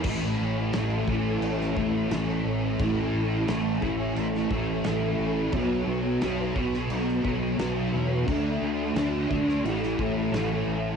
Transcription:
<<
  \new Staff \with { instrumentName = "Distorted electric guitar" } { \clef bass \time 4/4 \key b \dorian \tempo 4 = 88 <a, e a>4 <a, e a>8 <e a>4 <e a>8 <a, e a>4 | <a, e a>4 <a, e a>8 <e a>4 <e a>8 <a, e a>4 | <b, fis b>4 <b, fis b>8 <fis b>4 <fis b>8 <b, fis b>4 | <d a d'>4 <d a d'>8 <a d'>8 <a, e a>8 <e a>8 <a, e a>4 | }
  \new Staff \with { instrumentName = "Fingered electric bass" } { \clef bass \time 4/4 \key b \dorian a,,8 a,,8 a,,8 a,,8 a,,8 a,,8 a,,8 a,,8 | a,,8 a,,8 a,,8 a,,8 a,,8 a,,8 a,,8 a,,8 | b,,8 b,,8 b,,8 b,,8 b,,8 b,,8 b,,8 e,8 | d,8 d,8 d,8 d,8 a,,8 a,,8 a,,8 a,,8 | }
  \new DrumStaff \with { instrumentName = "Drums" } \drummode { \time 4/4 <cymc bd>4 <cymc sn>8 bd8 cymc16 sn16 bd8 <cymc sn>4 | <cymc bd>4 <cymc sn>8 bd8 cymc16 sn16 bd8 <cymc sn>4 | <cymc bd>4 <cymc sn>8 bd16 sn16 cymc16 sn16 bd8 <cymc sn>4 | <cymc bd>4 <cymc sn>8 bd16 sn16 cymc16 sn16 bd8 <cymc sn>4 | }
>>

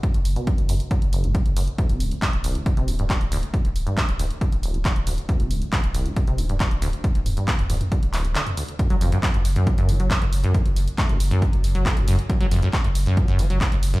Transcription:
<<
  \new Staff \with { instrumentName = "Acid bass" } { \clef bass \time 4/4 \key fis \minor \tempo 4 = 137 r8. b,16 eis16 r16 fis,16 r16 fis16 r16 fis,,16 a,16 fis,16 r16 fis,16 r16 | d,16 bis,16 bis,,16 d,16 d,16 r16 bis,,16 d,16 d,16 bis,16 bis,,16 g,16 d,16 r16 d,16 r16 | r8. g,16 bis,16 r16 d,16 r16 d16 r16 d,,16 f,16 d16 r16 d,16 r16 | d,16 bis,16 bis,,16 d,16 d,16 r16 bis,,16 d,16 d,16 bis,16 bis,,16 g,16 d,16 r16 d,16 r16 |
r8. g,16 bis,16 r16 d,16 r16 d16 r16 d,,16 f,16 d16 r16 d,16 r16 | fis,16 fis16 eis,16 fis,16 r16 fis,16 r16 fis,16 fis16 fis,16 fis16 fis16 r16 fis,16 r16 fis,16 | fis16 r8. a16 eis,16 r16 fis,16 eis,16 r8 fis16 a16 eis,16 fis,16 r16 | fis,16 fis16 eis,16 fis,16 r16 fis,16 r16 fis,16 fis16 fis,16 fis16 fis16 r16 fis,16 r16 fis,16 | }
  \new Staff \with { instrumentName = "Sub bass" } { \clef bass \time 4/4 \key fis \minor r16 fis,,16 fis,,16 r8 fis,,16 fis,,16 r8 fis,,16 fis,,16 fis,,16 r16 fis,,16 fis,,16 r16 | r16 d,,16 d,,16 r8 d,,16 d,,16 r8 d,,16 d,,16 d,,16 r16 d,,16 d,,16 r16 | r16 d,,16 d,,16 r8 d,,16 d,,16 r8 d,,16 d,,16 d,,16 r16 d,,16 d,,16 r16 | r16 d,,16 d,,16 r8 d,,16 d,,16 r8 d,,16 d,,16 d,,16 r16 d,,16 d,,16 r16 |
r16 d,,16 d,,16 r8 d,,16 d,,16 r8 d,,16 d,,16 d,,16 r4 | r16 fis,,16 fis,,16 r8 fis,,16 fis,,16 r8 fis,,16 fis,,16 fis,,16 r16 fis,,16 fis,,16 r16 | r16 fis,,16 fis,,16 r8 fis,,16 fis,,16 r8 fis,,16 fis,,16 fis,,16 r16 fis,,16 fis,,16 r16 | r16 fis,,16 fis,,16 r8 fis,,16 fis,,16 r8 fis,,16 fis,,16 fis,,16 r16 fis,,16 fis,,16 r16 | }
  \new DrumStaff \with { instrumentName = "Drums" } \drummode { \time 4/4 <hh bd>16 hh16 hho16 hh16 <hh bd>16 hh16 hho16 hh16 <hh bd>16 hh16 hho16 hh16 <hh bd>16 hh16 hho16 hh16 | <hh bd>16 hh16 hho16 hh16 <hc hh bd>16 hh16 hho16 hh16 <hh bd>16 hh16 hho16 hh16 <hc hh bd>16 hh16 hho16 hh16 | <hh bd>16 hh16 hho16 hh16 <hc hh bd>16 hh16 hho16 hh16 <hh bd>16 hh16 hho16 hh16 <hc hh bd>16 hh16 hho16 hh16 | <hh bd>16 hh16 hho16 hh16 <hc hh bd>16 hh16 hho16 hh16 <hh bd>16 hh16 hho16 hh16 <hc hh bd>16 hh16 hho16 hh16 |
<hh bd>16 hh16 <hho toml>16 hh16 <hc hh bd>16 <hh toml>16 <hho toml>16 <hh toml>16 <hh bd>16 hh16 <hc hho>16 hh16 <hc hh>16 <hh toml>16 hho16 hh16 | <hh bd>16 hh16 hho16 hh16 <hc hh bd>16 hh16 hho16 hh16 <hh bd>16 hh16 hho16 hh16 <hc hh bd>16 hh16 hho16 hh16 | <hh bd>16 hh16 hho16 hh16 <hc hh bd>16 hh16 hho16 hh16 <hh bd>16 hh16 hho16 hh16 <hc hh bd>16 hh16 hho16 hh16 | <hh bd>16 hh16 hho16 hh16 <hc hh bd>16 hh16 hho16 hh16 <hh bd>16 hh16 hho16 hh16 <hc hh bd>16 hh16 hho16 hh16 | }
>>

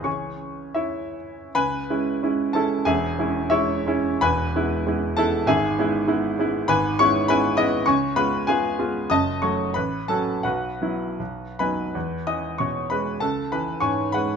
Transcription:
<<
  \new Staff \with { instrumentName = "Grand piano" } { \time 2/4 \key cis \minor \tempo 4 = 95 <cis'' gis'' cis'''>4 <e' cis'' e''>4 | <b' gis'' b''>4. <a' a''>8 | <gis' e'' gis''>4 <e' cis'' e''>4 | <b' gis'' b''>4. <a' a''>8 |
<gis' e'' gis''>4 r4 | \key e \major <b' gis'' b''>8 <cis'' cis'''>8 <b' gis'' b''>8 <dis'' dis'''>8 | <cis'' gis'' cis'''>8 <b' b''>8 <gis' eis'' gis''>4 | <dis'' a'' dis'''>8 <cis'' cis'''>8 <b' b''>8 <a' a''>8 |
<fis' b' fis''>4. <b' gis'' b''>8~ | <b' gis'' b''>8 <dis'' dis'''>8 <cis'' cis'''>8 <b' b''>8 | <a' a''>8 <b' b''>8 <cis'' gis'' cis'''>8 <b' fis'' b''>8 | }
  \new Staff \with { instrumentName = "Grand piano" } { \clef bass \time 2/4 \key cis \minor <cis, e cis' gis'>2 | cis,8 <gis cis' e'>8 <gis cis' e'>8 <gis cis' e'>8 | <e,, e,>8 <gis cis' e'>8 <gis cis'>8 <gis cis' e'>8 | <e,, e,>8 <gis b e'>8 <gis b e'>8 <gis b e'>8 |
<gis,, gis,>8 <gis b e'>8 <gis b e'>8 <gis b e'>8 | \key e \major <gis,, gis,>8 <gis b e'>8 <gis b e'>8 <gis b e'>8 | cis,8 <gis b eis'>8 <gis b eis'>8 <gis b eis'>8 | <fis,, fis,>8 <fis a fis'>8 a,,8 <fis cis' fis'>8 |
b,,8 <fis b e'>8 b,,8 <fis b dis'>8 | e,8 e8 b,8 gis8 | cis,8 e8 gis,8 gis8 | }
>>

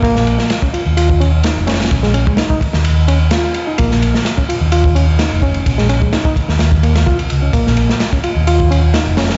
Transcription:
<<
  \new Staff \with { instrumentName = "Reed electric piano" } { \time 4/4 \key bes \minor \tempo 4 = 128 bes4 r16 des'16 f'16 r16 f'8 des'16 r16 ees'8 des'8~ | des'16 aes16 des'16 aes16 ees'16 ees'16 r4 des'16 r16 f'8. ees'16 | bes4 r16 des'16 f'16 r16 f'8 des'16 r16 ees'8 des'8~ | des'16 aes16 des'16 aes16 ees'16 ees'16 r4 bes16 r16 f'16 r8 des'16 |
bes4 r16 des'16 f'16 r16 f'8 des'16 r16 ees'8 des'8 | }
  \new Staff \with { instrumentName = "Fingered electric bass" } { \clef bass \time 4/4 \key bes \minor bes,,8. r4 ees,4~ ees,16 r16 f,,8. | bes,,8. r4 ees,4~ ees,16 r4 | bes,,8. r4 ees,4~ ees,16 r16 f,,8. | bes,,8. r4 ees,4~ ees,16 c,8 des,8 |
bes,,8. r4 ees,4~ ees,16 r16 f,,8. | }
  \new DrumStaff \with { instrumentName = "Drums" } \drummode { \time 4/4 <bd cymr>16 sn16 cymr16 sn16 <cymr sn>16 bd16 cymr8 cymr16 bd16 cymr8 <cymr sn>8 <cymr sn>32 <cymr sn>32 <cymr sn>32 <cymr sn>32 | <bd cymr>16 sn16 cymr16 bd16 <cymr sn>16 bd16 <bd cymr>16 sn16 cymr8 cymr8 <cymr sn>8 cymr8 | <bd cymr>16 sn16 cymr16 sn16 <cymr sn>16 bd16 cymr8 cymr16 bd16 cymr8 <cymr sn>8 <bd cymr>16 cymr16 | <bd cymr>16 sn16 cymr16 bd16 <cymr sn>16 bd16 <bd cymr>16 sn16 <cymr sn>16 bd16 cymr16 <cymr sn>16 bd16 cymr16 cymr8 |
<bd cymr>16 sn16 cymr16 sn16 <cymr sn>16 bd16 cymr8 cymr16 bd16 cymr8 <cymr sn>8 <cymr sn>32 <cymr sn>32 <cymr sn>16 | }
>>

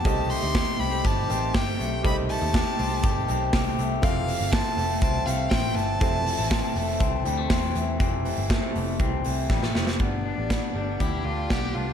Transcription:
<<
  \new Staff \with { instrumentName = "Violin" } { \time 4/4 \key f \lydian \tempo 4 = 121 a''8 c'''4 b''8 a''4 g''4 | b''8 a''2. r8 | f''4 a''4 a''8 f''8 g''8 a''8~ | a''2. r4 |
r1 | d'2 e'8 f'8 g'8 f'8 | }
  \new Staff \with { instrumentName = "Upright piano" } { \time 4/4 \key f \lydian <g' a' c'' ees''>1 | <g' a' c'' ees''>1 | <f a' c'' f''>1 | <f a' c'' e''>1 |
r1 | r1 | }
  \new Staff \with { instrumentName = "Clean electric guitar" } { \time 4/4 \key f \lydian <ees g'>8 a8 g'8 c'8 g'8 c'8 g'8 a8 | <ees g'>8 a8 g'8 c'8 g'8 c'8 g'8 a8 | <e c'>8 e8 c'8 a8 c'8 a8 c'8 e8 | <e c'>8 e8 c'8 a8 c'8 g16 a16 c'8 e8 |
<e c'>8 e8 a8 e8 c'8 e8 g16 a16 e8 | b8 d'8 b8 d'8 g'8 d'8 b8 d'8 | }
  \new Staff \with { instrumentName = "Clean electric guitar" } { \time 4/4 \key f \lydian <ees a c' g'>8. <a c' g'>4 <a c' g'>8. <ees a c' g'>8. <a c' g'>8. | <ees a c' g'>8. <a c' g'>4 <a c' g'>8. <ees a c' g'>8. <a c' g'>8. | <c a c'>8. <e a c'>4 <e a c'>8. <c e a c'>8. <e a c'>8. | <c a c'>8. <e a c'>4 <e a c'>8. <c e a c'>8. <e a c'>8. |
<c e a c'>8 <c e a c'>8. <f, c e a c'>8. <f, c e a c'>8 <c e a c'>8 <f, c e a c'>4 | <g, d g b d'>8. <g b d'>8. <d g b d'>4 <d g b d'>4 <d g b d'>8 | }
  \new Staff \with { instrumentName = "Picked electric bass" } { \clef bass \time 4/4 \key f \lydian c,8. d,8 r16 c,8 g,,8 a,,8 g,,8 b,,8 | c,8. ees,8 r16 c,8 g,,8 b,,8 c,8 c,8 | f,,8. g,,8 r16 f,,8 c,8 c,8 a,,8 g,,8 | f,,8. a,,8 r16 f,,8 c,8 d,8 e,8 e,8 |
f,,8. g,,8 r16 f,,8 c,8 c,8 a,,8 f,,8 | g,,8. a,,8 r16 g,,8 d,8 d,8 b,,8 c,8 | }
  \new DrumStaff \with { instrumentName = "Drums" } \drummode { \time 4/4 <hho hhp bd>8 <hho hhp>8 <hho hhp bd sn>8 <hho hhp>8 <hho hhp bd>8 <hho hhp>8 <hho hhp bd sn>8 <hho hhp>8 | <hho hhp bd>8 <hho hhp>8 <hho hhp bd sn>8 <hho hhp>8 <hho hhp bd>8 <hho hhp>8 <hho hhp bd sn>8 <hho hhp>8 | <hho hhp bd>8 <hho hhp>8 <bd sn>8 <hho hhp>8 <hho hhp bd>8 <hho hhp>8 <hho hhp bd sn>8 <hho hhp>8 | <hho hhp bd>8 <hho hhp>8 <hho hhp bd sn>8 <hho hhp>8 <hho hhp bd>8 <hho hhp>8 <hho hhp bd sn>8 <hho hhp>8 |
<hh bd>8 hho8 <hh bd sn>8 hho8 <hh bd>8 hho8 <bd sn>16 sn16 sn16 sn16 | <hh bd>4 <hh bd sn>4 <hh bd>4 <hh bd sn>4 | }
>>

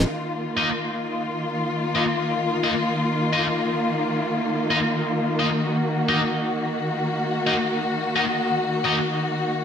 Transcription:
<<
  \new Staff \with { instrumentName = "Distorted electric guitar" } { \time 4/4 \key ees \minor \tempo 4 = 174 r4. <bes ees' ees''>8 r2 | r4. <bes ees' ees''>8 r4. <bes ees' ees''>8 | r4. <bes ees' ees''>8 r2 | r4. <bes ees' ees''>8 r4. <bes ees' ees''>8 |
r4. <bes ees' ees''>8 r2 | r4. <bes ees' ees''>8 r4. <bes ees' ees''>8 | r4. <bes ees' ees''>8 r2 | }
  \new Staff \with { instrumentName = "String section" } { \time 4/4 \key ees \minor << { f'1~ | f'1~ | f'1~ | f'1 |
ges'1~ | ges'1~ | ges'1 | } \\ { <ees bes>1~ | <ees bes>1~ | <ees bes>1~ | <ees bes>1~ |
<ees bes>1~ | <ees bes>1~ | <ees bes>1 | } >> }
  \new DrumStaff \with { instrumentName = "Drums" } \drummode { \time 4/4 cymc4 r4 r4 r4 | r4 r4 r4 r4 | r4 r4 r4 r4 | r4 r4 r4 r4 |
r4 r4 r4 r4 | r4 r4 r4 r4 | r4 r4 r4 r4 | }
>>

